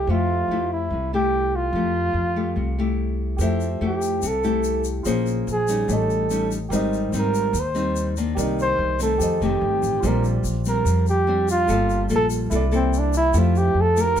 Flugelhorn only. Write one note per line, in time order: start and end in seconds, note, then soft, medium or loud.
0.00 0.12 G4 medium
0.10 0.71 F4 medium
0.72 1.10 E4 medium
1.15 1.57 G4 medium
1.56 3.00 F4 loud
3.86 4.29 G4 medium
4.27 4.87 A4 medium
5.52 5.95 G#4 medium
5.94 6.53 A4 medium
7.18 7.62 A#4 medium
7.60 8.19 C5 medium
8.62 8.99 C5 loud
9.03 9.40 A4 medium
9.44 10.09 G4 medium
10.07 10.26 A#4 medium
10.68 11.06 A#4 medium
11.09 11.47 G4 medium
11.51 12.08 F4 loud
12.16 12.27 A4 loud
12.75 13.00 C4 medium
12.99 13.16 D4 medium
13.17 13.40 E4 loud
13.39 13.59 F4 medium
13.58 13.83 G4 loud
13.81 14.02 A4 medium
14.01 14.20 A#4 loud